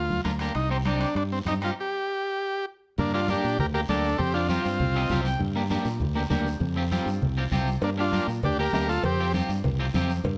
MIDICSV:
0, 0, Header, 1, 5, 480
1, 0, Start_track
1, 0, Key_signature, -2, "minor"
1, 0, Tempo, 302877
1, 878, Time_signature, 4, 2, 24, 8
1, 16445, End_track
2, 0, Start_track
2, 0, Title_t, "Transistor combo organ"
2, 0, Program_c, 0, 18
2, 0, Note_on_c, 0, 65, 77
2, 333, Note_off_c, 0, 65, 0
2, 877, Note_on_c, 0, 63, 86
2, 1101, Note_off_c, 0, 63, 0
2, 1122, Note_on_c, 0, 60, 76
2, 1230, Note_off_c, 0, 60, 0
2, 1375, Note_on_c, 0, 62, 80
2, 1575, Note_off_c, 0, 62, 0
2, 1594, Note_on_c, 0, 62, 86
2, 1820, Note_off_c, 0, 62, 0
2, 1851, Note_on_c, 0, 62, 82
2, 1957, Note_off_c, 0, 62, 0
2, 2097, Note_on_c, 0, 60, 83
2, 2202, Note_off_c, 0, 60, 0
2, 2344, Note_on_c, 0, 63, 89
2, 2447, Note_off_c, 0, 63, 0
2, 2603, Note_on_c, 0, 65, 85
2, 2702, Note_off_c, 0, 65, 0
2, 2856, Note_on_c, 0, 67, 94
2, 4208, Note_off_c, 0, 67, 0
2, 4735, Note_on_c, 0, 58, 71
2, 4758, Note_on_c, 0, 62, 92
2, 4945, Note_off_c, 0, 62, 0
2, 4954, Note_off_c, 0, 58, 0
2, 4964, Note_on_c, 0, 62, 74
2, 4979, Note_on_c, 0, 65, 92
2, 5188, Note_off_c, 0, 62, 0
2, 5219, Note_off_c, 0, 65, 0
2, 5233, Note_on_c, 0, 62, 77
2, 5251, Note_on_c, 0, 67, 92
2, 5667, Note_off_c, 0, 62, 0
2, 5684, Note_off_c, 0, 67, 0
2, 5703, Note_on_c, 0, 67, 78
2, 5703, Note_on_c, 0, 70, 101
2, 5807, Note_off_c, 0, 67, 0
2, 5807, Note_off_c, 0, 70, 0
2, 5929, Note_on_c, 0, 67, 76
2, 5931, Note_on_c, 0, 70, 98
2, 6037, Note_off_c, 0, 67, 0
2, 6038, Note_off_c, 0, 70, 0
2, 6166, Note_on_c, 0, 62, 81
2, 6179, Note_on_c, 0, 69, 101
2, 6612, Note_off_c, 0, 62, 0
2, 6629, Note_on_c, 0, 60, 78
2, 6630, Note_on_c, 0, 67, 99
2, 6666, Note_off_c, 0, 69, 0
2, 6860, Note_off_c, 0, 60, 0
2, 6874, Note_on_c, 0, 65, 98
2, 6881, Note_on_c, 0, 62, 73
2, 6885, Note_off_c, 0, 67, 0
2, 7087, Note_off_c, 0, 65, 0
2, 7106, Note_off_c, 0, 62, 0
2, 7106, Note_on_c, 0, 65, 79
2, 7117, Note_on_c, 0, 60, 62
2, 8251, Note_off_c, 0, 65, 0
2, 8257, Note_off_c, 0, 60, 0
2, 12419, Note_on_c, 0, 58, 70
2, 12419, Note_on_c, 0, 62, 81
2, 12522, Note_off_c, 0, 58, 0
2, 12522, Note_off_c, 0, 62, 0
2, 12676, Note_on_c, 0, 62, 69
2, 12677, Note_on_c, 0, 65, 93
2, 13105, Note_off_c, 0, 62, 0
2, 13105, Note_off_c, 0, 65, 0
2, 13380, Note_on_c, 0, 62, 75
2, 13396, Note_on_c, 0, 67, 94
2, 13592, Note_off_c, 0, 67, 0
2, 13593, Note_off_c, 0, 62, 0
2, 13611, Note_on_c, 0, 67, 80
2, 13633, Note_on_c, 0, 70, 105
2, 13828, Note_off_c, 0, 67, 0
2, 13844, Note_off_c, 0, 70, 0
2, 13847, Note_on_c, 0, 67, 78
2, 13863, Note_on_c, 0, 70, 106
2, 14066, Note_off_c, 0, 67, 0
2, 14088, Note_on_c, 0, 65, 74
2, 14092, Note_on_c, 0, 69, 98
2, 14097, Note_off_c, 0, 70, 0
2, 14306, Note_off_c, 0, 65, 0
2, 14331, Note_off_c, 0, 69, 0
2, 14337, Note_on_c, 0, 60, 73
2, 14352, Note_on_c, 0, 67, 91
2, 14774, Note_off_c, 0, 60, 0
2, 14782, Note_off_c, 0, 67, 0
2, 16445, End_track
3, 0, Start_track
3, 0, Title_t, "Clean electric guitar"
3, 0, Program_c, 1, 27
3, 388, Note_on_c, 1, 58, 83
3, 398, Note_on_c, 1, 62, 64
3, 399, Note_on_c, 1, 65, 90
3, 477, Note_off_c, 1, 58, 0
3, 478, Note_off_c, 1, 62, 0
3, 481, Note_off_c, 1, 65, 0
3, 643, Note_on_c, 1, 58, 73
3, 652, Note_on_c, 1, 62, 64
3, 655, Note_on_c, 1, 67, 75
3, 809, Note_off_c, 1, 58, 0
3, 810, Note_off_c, 1, 62, 0
3, 814, Note_off_c, 1, 67, 0
3, 1113, Note_on_c, 1, 60, 64
3, 1120, Note_on_c, 1, 63, 57
3, 1127, Note_on_c, 1, 67, 68
3, 1200, Note_off_c, 1, 60, 0
3, 1203, Note_off_c, 1, 63, 0
3, 1207, Note_off_c, 1, 67, 0
3, 1352, Note_on_c, 1, 60, 67
3, 1365, Note_on_c, 1, 63, 57
3, 1368, Note_on_c, 1, 67, 73
3, 1694, Note_off_c, 1, 60, 0
3, 1697, Note_off_c, 1, 63, 0
3, 1700, Note_off_c, 1, 67, 0
3, 2327, Note_on_c, 1, 60, 68
3, 2335, Note_on_c, 1, 63, 60
3, 2344, Note_on_c, 1, 67, 65
3, 2410, Note_off_c, 1, 60, 0
3, 2410, Note_off_c, 1, 63, 0
3, 2412, Note_off_c, 1, 67, 0
3, 2564, Note_on_c, 1, 60, 61
3, 2575, Note_on_c, 1, 63, 51
3, 2580, Note_on_c, 1, 67, 68
3, 2733, Note_off_c, 1, 60, 0
3, 2734, Note_off_c, 1, 63, 0
3, 2739, Note_off_c, 1, 67, 0
3, 4975, Note_on_c, 1, 58, 70
3, 4981, Note_on_c, 1, 62, 60
3, 4990, Note_on_c, 1, 67, 75
3, 5055, Note_off_c, 1, 58, 0
3, 5056, Note_off_c, 1, 62, 0
3, 5062, Note_off_c, 1, 67, 0
3, 5209, Note_on_c, 1, 58, 76
3, 5216, Note_on_c, 1, 62, 64
3, 5223, Note_on_c, 1, 67, 79
3, 5459, Note_off_c, 1, 58, 0
3, 5463, Note_off_c, 1, 62, 0
3, 5466, Note_off_c, 1, 67, 0
3, 5931, Note_on_c, 1, 58, 77
3, 5942, Note_on_c, 1, 62, 58
3, 5953, Note_on_c, 1, 67, 72
3, 6013, Note_off_c, 1, 58, 0
3, 6016, Note_off_c, 1, 62, 0
3, 6023, Note_off_c, 1, 67, 0
3, 6174, Note_on_c, 1, 58, 77
3, 6181, Note_on_c, 1, 62, 61
3, 6187, Note_on_c, 1, 67, 80
3, 6423, Note_off_c, 1, 58, 0
3, 6423, Note_off_c, 1, 62, 0
3, 6428, Note_off_c, 1, 67, 0
3, 6886, Note_on_c, 1, 60, 62
3, 6895, Note_on_c, 1, 67, 74
3, 6897, Note_on_c, 1, 65, 58
3, 6971, Note_off_c, 1, 60, 0
3, 6973, Note_off_c, 1, 65, 0
3, 6974, Note_off_c, 1, 67, 0
3, 7119, Note_on_c, 1, 60, 74
3, 7127, Note_on_c, 1, 65, 67
3, 7134, Note_on_c, 1, 67, 74
3, 7374, Note_off_c, 1, 60, 0
3, 7378, Note_off_c, 1, 65, 0
3, 7381, Note_off_c, 1, 67, 0
3, 7853, Note_on_c, 1, 60, 85
3, 7865, Note_on_c, 1, 65, 66
3, 7865, Note_on_c, 1, 67, 89
3, 7870, Note_on_c, 1, 75, 68
3, 7934, Note_off_c, 1, 60, 0
3, 7936, Note_off_c, 1, 65, 0
3, 7939, Note_off_c, 1, 67, 0
3, 8079, Note_off_c, 1, 75, 0
3, 8095, Note_on_c, 1, 60, 84
3, 8104, Note_on_c, 1, 67, 92
3, 8108, Note_on_c, 1, 65, 69
3, 8115, Note_on_c, 1, 77, 64
3, 8321, Note_off_c, 1, 77, 0
3, 8343, Note_off_c, 1, 60, 0
3, 8345, Note_on_c, 1, 79, 65
3, 8346, Note_off_c, 1, 65, 0
3, 8347, Note_off_c, 1, 67, 0
3, 8558, Note_off_c, 1, 79, 0
3, 8804, Note_on_c, 1, 58, 92
3, 8817, Note_on_c, 1, 62, 66
3, 8821, Note_on_c, 1, 67, 93
3, 8889, Note_off_c, 1, 58, 0
3, 8891, Note_off_c, 1, 62, 0
3, 8896, Note_off_c, 1, 67, 0
3, 9038, Note_on_c, 1, 58, 84
3, 9047, Note_on_c, 1, 62, 79
3, 9056, Note_on_c, 1, 67, 87
3, 9294, Note_off_c, 1, 58, 0
3, 9295, Note_off_c, 1, 62, 0
3, 9297, Note_off_c, 1, 67, 0
3, 9752, Note_on_c, 1, 58, 86
3, 9762, Note_on_c, 1, 62, 73
3, 9770, Note_on_c, 1, 67, 87
3, 9841, Note_off_c, 1, 58, 0
3, 9846, Note_off_c, 1, 62, 0
3, 9850, Note_off_c, 1, 67, 0
3, 9988, Note_on_c, 1, 58, 92
3, 9992, Note_on_c, 1, 62, 87
3, 10005, Note_on_c, 1, 67, 86
3, 10247, Note_off_c, 1, 58, 0
3, 10250, Note_off_c, 1, 62, 0
3, 10253, Note_off_c, 1, 67, 0
3, 10717, Note_on_c, 1, 60, 77
3, 10732, Note_on_c, 1, 65, 68
3, 10732, Note_on_c, 1, 67, 88
3, 10804, Note_off_c, 1, 60, 0
3, 10806, Note_off_c, 1, 65, 0
3, 10810, Note_off_c, 1, 67, 0
3, 10958, Note_on_c, 1, 60, 92
3, 10966, Note_on_c, 1, 65, 77
3, 10974, Note_on_c, 1, 67, 91
3, 11211, Note_off_c, 1, 60, 0
3, 11215, Note_off_c, 1, 65, 0
3, 11219, Note_off_c, 1, 67, 0
3, 11686, Note_on_c, 1, 60, 78
3, 11692, Note_on_c, 1, 65, 76
3, 11703, Note_on_c, 1, 67, 71
3, 11767, Note_off_c, 1, 60, 0
3, 11771, Note_off_c, 1, 65, 0
3, 11773, Note_off_c, 1, 67, 0
3, 11916, Note_on_c, 1, 60, 93
3, 11924, Note_on_c, 1, 65, 81
3, 11937, Note_on_c, 1, 67, 99
3, 12170, Note_off_c, 1, 60, 0
3, 12174, Note_off_c, 1, 65, 0
3, 12180, Note_off_c, 1, 67, 0
3, 12637, Note_on_c, 1, 58, 67
3, 12647, Note_on_c, 1, 62, 66
3, 12658, Note_on_c, 1, 67, 63
3, 12722, Note_off_c, 1, 58, 0
3, 12727, Note_off_c, 1, 62, 0
3, 12729, Note_off_c, 1, 67, 0
3, 12873, Note_on_c, 1, 58, 70
3, 12886, Note_on_c, 1, 62, 66
3, 12898, Note_on_c, 1, 67, 63
3, 13127, Note_off_c, 1, 58, 0
3, 13136, Note_off_c, 1, 62, 0
3, 13137, Note_off_c, 1, 67, 0
3, 13610, Note_on_c, 1, 58, 64
3, 13618, Note_on_c, 1, 62, 64
3, 13624, Note_on_c, 1, 67, 65
3, 13688, Note_off_c, 1, 58, 0
3, 13692, Note_off_c, 1, 62, 0
3, 13692, Note_off_c, 1, 67, 0
3, 13843, Note_on_c, 1, 58, 79
3, 13857, Note_on_c, 1, 62, 72
3, 13866, Note_on_c, 1, 67, 74
3, 14092, Note_off_c, 1, 58, 0
3, 14100, Note_off_c, 1, 62, 0
3, 14100, Note_off_c, 1, 67, 0
3, 14584, Note_on_c, 1, 67, 79
3, 14586, Note_on_c, 1, 65, 68
3, 14596, Note_on_c, 1, 60, 61
3, 14653, Note_off_c, 1, 65, 0
3, 14654, Note_off_c, 1, 60, 0
3, 14656, Note_off_c, 1, 67, 0
3, 14799, Note_on_c, 1, 60, 68
3, 14807, Note_on_c, 1, 65, 69
3, 14815, Note_on_c, 1, 67, 86
3, 15049, Note_off_c, 1, 60, 0
3, 15054, Note_off_c, 1, 65, 0
3, 15057, Note_off_c, 1, 67, 0
3, 15522, Note_on_c, 1, 60, 84
3, 15529, Note_on_c, 1, 65, 80
3, 15537, Note_on_c, 1, 67, 76
3, 15603, Note_off_c, 1, 60, 0
3, 15607, Note_off_c, 1, 65, 0
3, 15608, Note_off_c, 1, 67, 0
3, 15768, Note_on_c, 1, 60, 93
3, 15771, Note_on_c, 1, 65, 74
3, 15783, Note_on_c, 1, 67, 89
3, 16014, Note_off_c, 1, 60, 0
3, 16017, Note_off_c, 1, 65, 0
3, 16018, Note_off_c, 1, 67, 0
3, 16445, End_track
4, 0, Start_track
4, 0, Title_t, "Fingered electric bass"
4, 0, Program_c, 2, 33
4, 0, Note_on_c, 2, 38, 97
4, 294, Note_off_c, 2, 38, 0
4, 387, Note_on_c, 2, 38, 86
4, 776, Note_off_c, 2, 38, 0
4, 870, Note_on_c, 2, 36, 84
4, 1643, Note_off_c, 2, 36, 0
4, 1820, Note_on_c, 2, 43, 98
4, 2213, Note_off_c, 2, 43, 0
4, 2298, Note_on_c, 2, 43, 87
4, 2692, Note_off_c, 2, 43, 0
4, 4724, Note_on_c, 2, 43, 103
4, 5301, Note_off_c, 2, 43, 0
4, 5450, Note_on_c, 2, 46, 84
4, 5640, Note_off_c, 2, 46, 0
4, 5687, Note_on_c, 2, 38, 98
4, 6070, Note_off_c, 2, 38, 0
4, 6159, Note_on_c, 2, 38, 102
4, 6545, Note_off_c, 2, 38, 0
4, 6638, Note_on_c, 2, 41, 109
4, 7216, Note_off_c, 2, 41, 0
4, 7371, Note_on_c, 2, 43, 83
4, 7560, Note_off_c, 2, 43, 0
4, 7597, Note_on_c, 2, 36, 101
4, 7984, Note_off_c, 2, 36, 0
4, 8077, Note_on_c, 2, 36, 102
4, 8464, Note_off_c, 2, 36, 0
4, 8547, Note_on_c, 2, 43, 103
4, 9129, Note_off_c, 2, 43, 0
4, 9266, Note_on_c, 2, 46, 86
4, 9464, Note_off_c, 2, 46, 0
4, 9500, Note_on_c, 2, 38, 101
4, 9892, Note_off_c, 2, 38, 0
4, 9978, Note_on_c, 2, 38, 103
4, 10371, Note_off_c, 2, 38, 0
4, 10460, Note_on_c, 2, 41, 108
4, 11044, Note_off_c, 2, 41, 0
4, 11184, Note_on_c, 2, 43, 86
4, 11382, Note_off_c, 2, 43, 0
4, 11435, Note_on_c, 2, 36, 93
4, 11821, Note_off_c, 2, 36, 0
4, 11902, Note_on_c, 2, 36, 96
4, 12293, Note_off_c, 2, 36, 0
4, 12383, Note_on_c, 2, 43, 108
4, 12965, Note_off_c, 2, 43, 0
4, 13107, Note_on_c, 2, 46, 87
4, 13303, Note_off_c, 2, 46, 0
4, 13359, Note_on_c, 2, 38, 97
4, 13742, Note_off_c, 2, 38, 0
4, 13836, Note_on_c, 2, 38, 106
4, 14220, Note_off_c, 2, 38, 0
4, 14318, Note_on_c, 2, 41, 111
4, 14893, Note_off_c, 2, 41, 0
4, 15035, Note_on_c, 2, 43, 86
4, 15227, Note_off_c, 2, 43, 0
4, 15274, Note_on_c, 2, 36, 96
4, 15659, Note_off_c, 2, 36, 0
4, 15757, Note_on_c, 2, 41, 102
4, 16140, Note_off_c, 2, 41, 0
4, 16222, Note_on_c, 2, 43, 112
4, 16445, Note_off_c, 2, 43, 0
4, 16445, End_track
5, 0, Start_track
5, 0, Title_t, "Drums"
5, 159, Note_on_c, 9, 63, 71
5, 318, Note_off_c, 9, 63, 0
5, 393, Note_on_c, 9, 73, 60
5, 394, Note_on_c, 9, 65, 64
5, 397, Note_on_c, 9, 63, 77
5, 552, Note_off_c, 9, 73, 0
5, 553, Note_off_c, 9, 65, 0
5, 555, Note_off_c, 9, 63, 0
5, 621, Note_on_c, 9, 65, 65
5, 634, Note_on_c, 9, 73, 66
5, 779, Note_off_c, 9, 65, 0
5, 793, Note_off_c, 9, 73, 0
5, 868, Note_on_c, 9, 65, 63
5, 873, Note_on_c, 9, 74, 65
5, 1026, Note_off_c, 9, 65, 0
5, 1032, Note_off_c, 9, 74, 0
5, 1349, Note_on_c, 9, 73, 65
5, 1352, Note_on_c, 9, 65, 62
5, 1354, Note_on_c, 9, 63, 68
5, 1508, Note_off_c, 9, 73, 0
5, 1511, Note_off_c, 9, 65, 0
5, 1512, Note_off_c, 9, 63, 0
5, 1594, Note_on_c, 9, 65, 63
5, 1595, Note_on_c, 9, 73, 60
5, 1752, Note_off_c, 9, 65, 0
5, 1754, Note_off_c, 9, 73, 0
5, 1834, Note_on_c, 9, 74, 67
5, 1843, Note_on_c, 9, 65, 61
5, 1992, Note_off_c, 9, 74, 0
5, 2001, Note_off_c, 9, 65, 0
5, 2314, Note_on_c, 9, 73, 63
5, 2320, Note_on_c, 9, 63, 74
5, 2323, Note_on_c, 9, 65, 66
5, 2472, Note_off_c, 9, 73, 0
5, 2478, Note_off_c, 9, 63, 0
5, 2482, Note_off_c, 9, 65, 0
5, 2552, Note_on_c, 9, 73, 62
5, 2565, Note_on_c, 9, 65, 64
5, 2710, Note_off_c, 9, 73, 0
5, 2723, Note_off_c, 9, 65, 0
5, 4720, Note_on_c, 9, 74, 69
5, 4729, Note_on_c, 9, 63, 33
5, 4729, Note_on_c, 9, 64, 69
5, 4879, Note_off_c, 9, 74, 0
5, 4887, Note_off_c, 9, 63, 0
5, 4887, Note_off_c, 9, 64, 0
5, 5196, Note_on_c, 9, 63, 71
5, 5203, Note_on_c, 9, 73, 68
5, 5354, Note_off_c, 9, 63, 0
5, 5362, Note_off_c, 9, 73, 0
5, 5450, Note_on_c, 9, 73, 68
5, 5609, Note_off_c, 9, 73, 0
5, 5682, Note_on_c, 9, 74, 71
5, 5688, Note_on_c, 9, 63, 34
5, 5688, Note_on_c, 9, 64, 84
5, 5840, Note_off_c, 9, 74, 0
5, 5846, Note_off_c, 9, 63, 0
5, 5846, Note_off_c, 9, 64, 0
5, 6159, Note_on_c, 9, 63, 78
5, 6161, Note_on_c, 9, 73, 65
5, 6317, Note_off_c, 9, 63, 0
5, 6319, Note_off_c, 9, 73, 0
5, 6399, Note_on_c, 9, 73, 74
5, 6558, Note_off_c, 9, 73, 0
5, 6643, Note_on_c, 9, 63, 34
5, 6643, Note_on_c, 9, 64, 73
5, 6647, Note_on_c, 9, 74, 72
5, 6801, Note_off_c, 9, 63, 0
5, 6801, Note_off_c, 9, 64, 0
5, 6806, Note_off_c, 9, 74, 0
5, 7115, Note_on_c, 9, 63, 77
5, 7126, Note_on_c, 9, 73, 73
5, 7274, Note_off_c, 9, 63, 0
5, 7285, Note_off_c, 9, 73, 0
5, 7374, Note_on_c, 9, 73, 67
5, 7532, Note_off_c, 9, 73, 0
5, 7604, Note_on_c, 9, 63, 34
5, 7604, Note_on_c, 9, 64, 83
5, 7606, Note_on_c, 9, 74, 73
5, 7763, Note_off_c, 9, 63, 0
5, 7763, Note_off_c, 9, 64, 0
5, 7765, Note_off_c, 9, 74, 0
5, 8075, Note_on_c, 9, 63, 78
5, 8075, Note_on_c, 9, 64, 73
5, 8079, Note_on_c, 9, 73, 72
5, 8234, Note_off_c, 9, 63, 0
5, 8234, Note_off_c, 9, 64, 0
5, 8237, Note_off_c, 9, 73, 0
5, 8320, Note_on_c, 9, 73, 74
5, 8478, Note_off_c, 9, 73, 0
5, 8565, Note_on_c, 9, 63, 34
5, 8565, Note_on_c, 9, 64, 75
5, 8565, Note_on_c, 9, 74, 73
5, 8723, Note_off_c, 9, 63, 0
5, 8723, Note_off_c, 9, 64, 0
5, 8723, Note_off_c, 9, 74, 0
5, 9035, Note_on_c, 9, 63, 76
5, 9035, Note_on_c, 9, 73, 68
5, 9193, Note_off_c, 9, 73, 0
5, 9194, Note_off_c, 9, 63, 0
5, 9269, Note_on_c, 9, 73, 67
5, 9428, Note_off_c, 9, 73, 0
5, 9514, Note_on_c, 9, 74, 73
5, 9529, Note_on_c, 9, 63, 35
5, 9529, Note_on_c, 9, 64, 81
5, 9673, Note_off_c, 9, 74, 0
5, 9688, Note_off_c, 9, 63, 0
5, 9688, Note_off_c, 9, 64, 0
5, 9989, Note_on_c, 9, 73, 70
5, 9990, Note_on_c, 9, 63, 82
5, 9990, Note_on_c, 9, 64, 74
5, 10147, Note_off_c, 9, 73, 0
5, 10148, Note_off_c, 9, 63, 0
5, 10148, Note_off_c, 9, 64, 0
5, 10248, Note_on_c, 9, 73, 71
5, 10407, Note_off_c, 9, 73, 0
5, 10467, Note_on_c, 9, 63, 34
5, 10467, Note_on_c, 9, 64, 67
5, 10478, Note_on_c, 9, 74, 72
5, 10625, Note_off_c, 9, 63, 0
5, 10625, Note_off_c, 9, 64, 0
5, 10637, Note_off_c, 9, 74, 0
5, 10956, Note_on_c, 9, 63, 76
5, 10969, Note_on_c, 9, 73, 72
5, 11114, Note_off_c, 9, 63, 0
5, 11128, Note_off_c, 9, 73, 0
5, 11215, Note_on_c, 9, 73, 68
5, 11373, Note_off_c, 9, 73, 0
5, 11446, Note_on_c, 9, 74, 67
5, 11450, Note_on_c, 9, 63, 36
5, 11450, Note_on_c, 9, 64, 84
5, 11605, Note_off_c, 9, 74, 0
5, 11608, Note_off_c, 9, 63, 0
5, 11608, Note_off_c, 9, 64, 0
5, 11909, Note_on_c, 9, 63, 80
5, 11909, Note_on_c, 9, 64, 67
5, 11923, Note_on_c, 9, 73, 69
5, 12068, Note_off_c, 9, 63, 0
5, 12068, Note_off_c, 9, 64, 0
5, 12082, Note_off_c, 9, 73, 0
5, 12164, Note_on_c, 9, 73, 73
5, 12322, Note_off_c, 9, 73, 0
5, 12390, Note_on_c, 9, 56, 105
5, 12397, Note_on_c, 9, 63, 34
5, 12407, Note_on_c, 9, 74, 73
5, 12549, Note_off_c, 9, 56, 0
5, 12556, Note_off_c, 9, 63, 0
5, 12566, Note_off_c, 9, 74, 0
5, 12868, Note_on_c, 9, 63, 80
5, 12886, Note_on_c, 9, 73, 70
5, 13026, Note_off_c, 9, 63, 0
5, 13045, Note_off_c, 9, 73, 0
5, 13132, Note_on_c, 9, 73, 67
5, 13291, Note_off_c, 9, 73, 0
5, 13358, Note_on_c, 9, 63, 35
5, 13358, Note_on_c, 9, 64, 82
5, 13366, Note_on_c, 9, 56, 81
5, 13376, Note_on_c, 9, 74, 71
5, 13516, Note_off_c, 9, 63, 0
5, 13516, Note_off_c, 9, 64, 0
5, 13525, Note_off_c, 9, 56, 0
5, 13535, Note_off_c, 9, 74, 0
5, 13832, Note_on_c, 9, 63, 83
5, 13841, Note_on_c, 9, 66, 77
5, 13851, Note_on_c, 9, 73, 76
5, 13990, Note_off_c, 9, 63, 0
5, 14000, Note_off_c, 9, 66, 0
5, 14009, Note_off_c, 9, 73, 0
5, 14091, Note_on_c, 9, 73, 73
5, 14249, Note_off_c, 9, 73, 0
5, 14314, Note_on_c, 9, 63, 33
5, 14314, Note_on_c, 9, 64, 72
5, 14318, Note_on_c, 9, 56, 103
5, 14336, Note_on_c, 9, 74, 67
5, 14472, Note_off_c, 9, 63, 0
5, 14472, Note_off_c, 9, 64, 0
5, 14477, Note_off_c, 9, 56, 0
5, 14494, Note_off_c, 9, 74, 0
5, 14802, Note_on_c, 9, 63, 80
5, 14808, Note_on_c, 9, 73, 72
5, 14960, Note_off_c, 9, 63, 0
5, 14967, Note_off_c, 9, 73, 0
5, 15044, Note_on_c, 9, 73, 66
5, 15203, Note_off_c, 9, 73, 0
5, 15277, Note_on_c, 9, 74, 74
5, 15280, Note_on_c, 9, 56, 77
5, 15291, Note_on_c, 9, 63, 36
5, 15291, Note_on_c, 9, 64, 87
5, 15436, Note_off_c, 9, 74, 0
5, 15438, Note_off_c, 9, 56, 0
5, 15449, Note_off_c, 9, 63, 0
5, 15449, Note_off_c, 9, 64, 0
5, 15754, Note_on_c, 9, 63, 82
5, 15754, Note_on_c, 9, 64, 72
5, 15762, Note_on_c, 9, 73, 72
5, 15912, Note_off_c, 9, 63, 0
5, 15912, Note_off_c, 9, 64, 0
5, 15921, Note_off_c, 9, 73, 0
5, 16004, Note_on_c, 9, 73, 72
5, 16163, Note_off_c, 9, 73, 0
5, 16230, Note_on_c, 9, 63, 33
5, 16230, Note_on_c, 9, 64, 74
5, 16239, Note_on_c, 9, 56, 100
5, 16240, Note_on_c, 9, 74, 74
5, 16388, Note_off_c, 9, 63, 0
5, 16388, Note_off_c, 9, 64, 0
5, 16397, Note_off_c, 9, 56, 0
5, 16398, Note_off_c, 9, 74, 0
5, 16445, End_track
0, 0, End_of_file